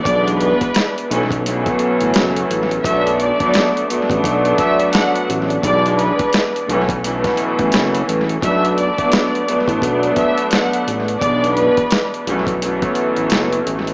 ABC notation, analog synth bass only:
X:1
M:4/4
L:1/16
Q:"Swing 16ths" 1/4=86
K:Bdor
V:1 name="Analog synth bass" clef=bass
B,,,3 z3 B,,,4 z A,,, F,,,2 A,,,2 | B,,,3 z4 A,,, B,,,2 z4 A,,,2 | B,,,3 z3 B,,,4 z A,,, F,,,2 A,,,2 | B,,,3 z4 A,,, B,,,2 z4 A,,,2 |
B,,,3 z3 B,,,4 z A,,, F,,,2 A,,,2 |]